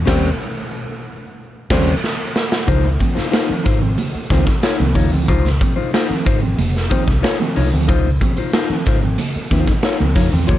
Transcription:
0.05 D#2 G3 C4 C#4 G4 C5, kick, snare, crash
1.70 D#2 C#3 F3 G3 C4 C#4 G4 C5, kick, snare, crash
2.04 snare
2.36 snare
2.52 snare
2.67 C#2 C#3 D#4 F4 C5, kick, closed hi-hat, muted conga, low conga
2.85 muted conga
3.00 F3 C4, muted clean electric guitar stroke, kick, closed hi-hat, high conga
3.15 D#4 F4 C5, muted fingered electric bass stroke, snare, closed hi-hat
3.31 D#4 F4 C5, snare, closed hi-hat, muted conga, high conga
3.49 D#3 F3 C4, muted clean electric guitar stroke, muted fingered electric bass stroke, muted conga
3.64 G#1 C#3 D#4 F4 C5, kick, snare, closed hi-hat
3.82 D#3 F3 C4, muted clean electric guitar stroke
3.98 C#3, closed hi-hat, muted conga, high conga
4.15 muted clean electric guitar stroke, muted fingered electric bass stroke
4.30 C#2 D#3 F3 C4 D#4 F4 C5, kick, snare, closed hi-hat, high conga
4.47 F3 C4, muted clean electric guitar stroke, kick, snare
4.63 D#4 F4 C#5, snare, closed hi-hat, muted conga
4.79 C2 D#3 F3 C4, muted clean electric guitar stroke, muted conga, high conga
4.95 D#2 C#3 D#4 F4 C#5, kick, open hi-hat, low conga
5.11 D2 D#3 F3 C4
5.28 C#2 C#3 D#4 F4 C5, kick, closed hi-hat, low conga
5.46 snare, closed hi-hat, muted conga
5.61 F3 C4, muted clean electric guitar stroke, kick, closed hi-hat, high conga
5.76 D#4 F4 C5, muted fingered electric bass stroke
5.93 D#4 F4 C5, snare, closed hi-hat, high conga
6.09 D#3 F3 C4, muted clean electric guitar stroke, muted fingered electric bass stroke
6.25 G#1 C#3 D#4 F4 C5, kick, closed hi-hat
6.42 D#3 F3 C4, muted clean electric guitar stroke
6.58 F1 C#3, closed hi-hat, high conga
6.74 muted clean electric guitar stroke, snare
6.90 D#3 F3 C4 D#4 F4 C5, kick, closed hi-hat, high conga
7.06 C2 F3 C4, muted clean electric guitar stroke, kick, snare
7.22 D#4 F4 C#5, snare, closed hi-hat, muted conga
7.40 D#3 F3 C4, muted clean electric guitar stroke, high conga
7.55 C2 C#3 D#4 F4 C#5, open hi-hat, low conga
7.73 D2 D#3 F3 C4
7.88 C#2 C#3 D#4 F4 C5, kick, closed hi-hat, muted conga, low conga
8.06 muted conga
8.21 F3 C4, muted clean electric guitar stroke, kick, closed hi-hat, high conga
8.37 D#4 F4 C5, muted fingered electric bass stroke, closed hi-hat
8.53 D#4 F4 C5, snare, closed hi-hat, high conga
8.70 D#3 F3 C4, muted fingered electric bass stroke, muted clean electric guitar stroke, muted conga
8.86 G#1 C#3 D#4 F4 C5, kick, snare, closed hi-hat
9.02 D#3 F3 C4, muted clean electric guitar stroke
9.18 C#3, muted clean electric guitar stroke, closed hi-hat, muted conga, high conga
9.35 muted fingered electric bass stroke, muted clean electric guitar stroke, muted conga
9.51 D#2 D#3 F3 C4 D#4 F4 C5, kick, snare, closed hi-hat, high conga
9.67 F3 C4, muted clean electric guitar stroke, kick, snare
9.83 D#4 F4 C#5, snare, closed hi-hat, muted conga
10.00 C#2 D#3 F3 C4, muted clean electric guitar stroke, muted conga, high conga
10.15 F2 C#3 D#4 F4 C#5, kick, snare, open hi-hat, low conga
10.32 E2 D#3 F3 C4, muted clean electric guitar stroke
10.47 D#2 D#3 F4 G4 C#5, kick, closed hi-hat
10.51 muted conga, low conga

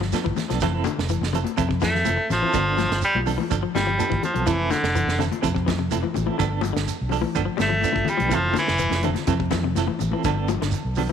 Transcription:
Already playing: G1
0.01 F3, snare
0.12 F3 B3 D4 A4, snare, closed hi-hat, high conga, shekere
0.24 G1 E3, muted clean electric guitar stroke, kick, high conga
0.36 muted fingered electric bass stroke, muted clean electric guitar stroke, snare, closed hi-hat, high conga, low conga, shekere
0.49 B1 F3 B3 D4 A4, snare, closed hi-hat
0.60 F1 E3 C4 E4 A4, kick, snare, closed hi-hat, shekere
0.74 C4 E4 A4
0.84 D3, muted clean electric guitar stroke, closed hi-hat, high conga, shekere
0.98 F1, muted clean electric guitar stroke, snare
1.09 E3, muted clean electric guitar stroke, closed hi-hat, shekere
1.21 F1, snare, high conga
1.33 E3 C4 E4 A4, muted clean electric guitar stroke, closed hi-hat, low conga, shekere
1.44 muted clean electric guitar stroke, closed hi-hat, high conga
1.57 F2 C3 E3 C4 E4 A4, kick, closed hi-hat, shekere
1.69 C3, muted clean electric guitar stroke, kick
1.80 E3 A3, muted clean electric guitar stroke, kick, snare, closed hi-hat, high conga, shekere
1.94 snare, low conga
2.05 F1 E3 C4 E4 A4, closed hi-hat, high conga, shekere
2.17 muted clean electric guitar stroke
2.30 A1 F3, muted clean electric guitar stroke, snare, closed hi-hat, low conga, shekere
2.42 E3 C4 E4 A4, muted fingered electric bass stroke
2.53 G1 D3 F3 B3 D4 A4, kick, closed hi-hat, shekere
2.67 B3 D4 A4
2.78 F3, muted clean electric guitar stroke, snare, closed hi-hat, high conga, shekere
2.90 G1, muted clean electric guitar stroke, snare, closed hi-hat
3.02 G3, muted clean electric guitar stroke, closed hi-hat, shekere
3.15 B1, high conga
3.26 F3 B3 D4 A4, open hi-hat, low conga, shekere
3.38 E3, muted clean electric guitar stroke, high conga
3.50 G1 F3 D4 A4, muted clean electric guitar stroke, kick, closed hi-hat, shekere
3.62 F3, muted clean electric guitar stroke
3.75 G1 G3, muted clean electric guitar stroke, snare, closed hi-hat, high conga, shekere
3.87 F3, low conga
3.98 F3 B3 D4 A4, closed hi-hat, high conga, shekere
4.10 G1 E3, muted clean electric guitar stroke, kick, high conga
4.23 F3, muted clean electric guitar stroke, muted fingered electric bass stroke, closed hi-hat, low conga, shekere
4.34 B1 F3 B3 A4, closed hi-hat
4.46 F1 E3 C4 E4 A4, kick, closed hi-hat, shekere
4.58 C4 E4 A4
4.70 D3, muted clean electric guitar stroke, snare, closed hi-hat, high conga, shekere
4.82 F1, muted clean electric guitar stroke, snare
4.95 E3, muted clean electric guitar stroke, closed hi-hat, shekere
5.07 F1, snare
5.19 D3 E3 C4 E4 A4, snare, closed hi-hat, low conga, shekere
5.31 muted clean electric guitar stroke, closed hi-hat, high conga
5.42 F2 C3 E3 C4 E4 A4, kick, closed hi-hat, shekere
5.55 C3, muted clean electric guitar stroke, kick
5.66 E3, muted clean electric guitar stroke, kick, snare, closed hi-hat, high conga, shekere
5.79 C3
5.91 F1 E3 C4 E4 A4, closed hi-hat, high conga, shekere
6.03 E3, muted clean electric guitar stroke, high conga
6.14 A1, muted clean electric guitar stroke, closed hi-hat, high conga, low conga, shekere
6.26 E3 C4 E4 A4, muted fingered electric bass stroke, high conga
6.38 G1 D3 F3 B3 D4 A4, kick, closed hi-hat, shekere
6.50 B3 D4 A4
6.61 F3, muted clean electric guitar stroke, closed hi-hat, high conga, shekere
6.73 G1 D3, muted clean electric guitar stroke, snare, closed hi-hat
6.88 muted clean electric guitar stroke, closed hi-hat, shekere
7.01 B1
7.09 F3 D4 A4, open hi-hat, low conga, shekere
7.21 E3, muted clean electric guitar stroke, high conga
7.35 G1 F3 B3 D4 A4, kick, closed hi-hat, shekere
7.45 F3, muted clean electric guitar stroke
7.57 G1 G3, muted clean electric guitar stroke, snare, closed hi-hat, high conga, shekere
7.62 A3
7.69 F3, low conga
7.81 F3 B3 D4 A4, closed hi-hat, high conga, shekere
7.93 G1 D3, muted clean electric guitar stroke, kick, high conga
8.05 muted fingered electric bass stroke, muted clean electric guitar stroke, closed hi-hat, high conga, low conga, shekere
8.09 G3
8.17 B1 F3 B3 D4, closed hi-hat, high conga
8.29 F1 E3 C4 E4 A4, kick, closed hi-hat, shekere
8.35 F3
8.44 C4 E4 A4
8.54 D3, muted clean electric guitar stroke, snare, closed hi-hat, high conga, shekere
8.59 E3
8.68 F1, muted clean electric guitar stroke, snare
8.78 E3, muted clean electric guitar stroke, closed hi-hat, shekere
8.90 F1, snare, high conga
9.03 D3 E3 C4 E4 A4, closed hi-hat, low conga, shekere
9.14 muted clean electric guitar stroke, snare, closed hi-hat, high conga
9.27 F2 C3 E3 C4 E4 A4, kick, closed hi-hat, shekere
9.40 C3, muted clean electric guitar stroke, kick
9.51 E3, muted clean electric guitar stroke, kick, snare, closed hi-hat, high conga, shekere
9.63 C3, low conga
9.75 F1 E3 C4 E4 A4, snare, closed hi-hat, high conga, shekere
9.87 E3, muted clean electric guitar stroke, high conga
9.99 A1, muted clean electric guitar stroke, closed hi-hat, low conga, shekere
10.11 E3 C4 E4 A4, muted fingered electric bass stroke, high conga
10.24 G1 D3 F3 B3 D4 A4, kick, closed hi-hat, shekere
10.37 B3 D4 A4
10.48 F3, muted clean electric guitar stroke, closed hi-hat, high conga, shekere
10.62 G1 D3, muted clean electric guitar stroke, snare, closed hi-hat
10.71 muted clean electric guitar stroke, closed hi-hat, shekere
10.85 B1
10.95 F3 B3 D4 A4, open hi-hat, low conga, shekere
11.09 E3

